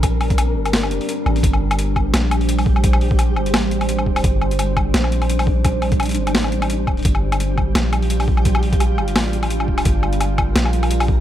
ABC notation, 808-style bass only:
X:1
M:4/4
L:1/16
Q:"Swing 16ths" 1/4=171
K:Gm
V:1 name="808-style bass" clef=bass
B,,,6 G,,,4 F,,, z3 A,,,2 | G,,,8 B,,,8- | B,,,6 G,,,2 A,,,6 D,,,2 | G,,,8 B,,,8- |
B,,,6 G,,,2 A,,,6 D,,,2 | G,,,8 B,,,8- | B,,,6 G,,,2 A,,,6 D,,,2 | G,,,8 B,,,8 |]